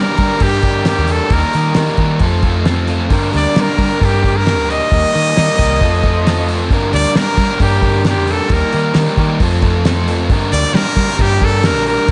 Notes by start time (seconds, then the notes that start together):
Already playing: G2 D3 D4 G4 A#4
0.00 G3 A#3 D4 G4 A#4
0.18 G3 A#3 D4 G4 A#4, kick, open hi-hat
0.22 G3
0.40 G2 G3 A#3 D4 G4 A#4, kick, open hi-hat
0.44 G4
0.61 A#3 D4 G4 A#4, kick, open hi-hat
0.66 G2 D3 G3
0.85 G3 A#3 D4 G4 A#4, snare, open hi-hat
0.90 G4
0.98 E2
1.07 D4 G4, open hi-hat
1.11 G3 A#3 A4
1.30 D#2 D#3 G3 A#3 A#4, kick, open hi-hat
1.35 D#4 G4
1.53 D#3 G3 D#4 G4 A#4, open hi-hat
1.58 A#3
1.74 D#3 G3 A#3 A#4, snare, open hi-hat
1.79 D#4 G4
1.97 D#3 G3 D#4 G4 A#4, kick, open hi-hat
2.02 A#3
2.19 F2 F3 A3 C4, kick, open hi-hat
2.24 F4 A4
2.42 C4 F4 A4, kick, open hi-hat
2.46 F3
2.65 F3 A3 C4 F4 A4, snare, open hi-hat
2.87 C4 F4 A4, open hi-hat
3.09 G2 D3 G3 A#3 D4 G4 A#4, kick, open hi-hat
3.32 D2 A#3 D4 G4 A#4, open hi-hat
3.36 G3 D5
3.56 G2 D3 G3 A#3 D4 G4 A#4, snare, open hi-hat
3.61 A#4
3.78 G3 A#3 D4 G4 A#4, kick, open hi-hat
3.82 G3
4.01 G2 G3 A#3 D4 G4 A#4, kick, open hi-hat
4.23 D3 G3 A#3 D4 G4 A#4, kick, open hi-hat
4.28 G2
4.37 A#4
4.46 G3 A#3 D4 G4 A#4, snare, open hi-hat
4.58 D2
4.69 G3 A#3 D4 G4 D#5, open hi-hat
4.91 D#2 D#3 G3 A#3 D#4 G4 A#4, kick, open hi-hat
5.13 D#3 G3 A#3 D#4 G4 A#4, open hi-hat
5.36 D#3 G3 A#3 D#4 G4 A#4, snare, open hi-hat
5.58 C2 G3 D#4 G4 A#4, kick, open hi-hat
5.63 A#3
5.81 F2 F3 A3 C4 F4 A4, kick, open hi-hat
6.03 F3 C4 F4 A4, kick, open hi-hat
6.25 F3 A3 C4 F4 A4, snare, open hi-hat
6.47 C4 F4 A4, open hi-hat
6.70 G2 D3 G3 A#3 D4 G4 A#4, kick, open hi-hat
6.92 D2 G3 A#3 D4 G4 A#4 D5, open hi-hat
7.15 G2 D3 G3 A#3 D4 G4 A#4, snare, open hi-hat
7.37 G3 A#3 D4 G4 A#4, kick, open hi-hat
7.41 G3
7.60 G2 G3 A#3 D4 G4 A#4, kick, open hi-hat
7.82 G2 D3 G3 A#3 D4 G4 A#4, kick, open hi-hat
8.05 G3 A#3 D4 G4 A#4, snare, open hi-hat
8.09 G4
8.18 F2
8.27 G3 A#3 D4 A#4, open hi-hat
8.31 A4
8.50 D#2 D#3 G3 A#3 D#4 G4 A#4, kick, open hi-hat
8.73 D#3 G3 A#3 D#4 G4 A#4, open hi-hat
8.94 D#3 G3 A#3 D#4 A#4, snare, open hi-hat
8.98 G4
9.17 D#3 G3 A#3 D#4 G4 A#4, kick, open hi-hat
9.40 F2 F3 A3 C4 F4 A4, kick, open hi-hat
9.62 F3 C4 F4 A4, kick, open hi-hat
9.85 F3 A3 C4 F4 A4, snare, open hi-hat
10.08 F4 A4, open hi-hat
10.12 C4
10.30 G2 D3 G3 A#3 D4 G4, kick, open hi-hat
10.34 A#4
10.52 D2 A#3 D4 G4 A#4 D5, open hi-hat
10.57 G3
10.74 G2 D3 G3 A#3 D4 G4 A#4, snare, open hi-hat
10.96 G3 A#3 D4 G4 A#4, kick, open hi-hat
11.19 G2 G3 A#3 D4 G4 A#4, kick, open hi-hat
11.41 G2 D3 G3 A#3 D4 G4 A4 A#4, kick, open hi-hat
11.63 G3 A#3 D4 G4 A#4, snare, open hi-hat
11.76 A#1
11.85 A#3 D4 A#4, open hi-hat
11.89 G3
12.07 D#3, open hi-hat